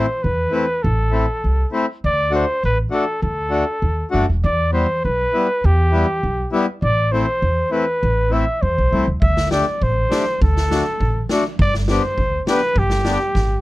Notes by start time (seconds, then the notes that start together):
Already playing: C5
0.23 E2 B4
0.51 A3 C4 E4
0.83 A1 A4
1.12 A3 C4 E4
1.44 C2
1.72 A3 C4 E4
2.04 D2 D5
2.31 A3 D4 F#4
2.35 C5
2.63 A1 B4
2.90 A3 D4 F#4 A4
3.22 D2 A4
3.50 A3 D4 F#4
3.82 D#2
4.11 F#1 A3 D4 F#4
4.29 E1
4.44 E2 D5
4.72 G3 B3 E4 C5
5.05 B1 B4
5.34 G3 B3 E4
5.64 E2 G4
5.92 G3 B3 E4
6.23 B1
6.52 G3 B3 E4
6.82 A1 D5
7.12 A3 C4 E4 C5
7.42 E2
7.71 A3 C4 E4 B4
8.03 A1
8.31 A3 C4 E4 E5
8.62 E2 C5
8.78 B1
8.92 C2 A3 C4 E4
9.07 D2
9.22 D2 E5, kick
9.37 snare
9.51 A3 D4 G4 D5, snare
9.81 A1 C5, kick
10.11 A3 D4 G4, snare
10.41 D2 A4, kick
10.57 snare
10.71 A3 D4 F#4, snare
11.00 A1, kick
11.29 A3 D4 F#4, snare
11.59 G1 D5, kick
11.74 snare
11.88 B3 D4 G4 C5, snare
12.18 D2, kick
12.47 B3 D4 G4 B4, snare
12.76 G1 G4, kick
12.90 snare
13.05 B3 D4 G4, snare
13.35 G#1, kick, snare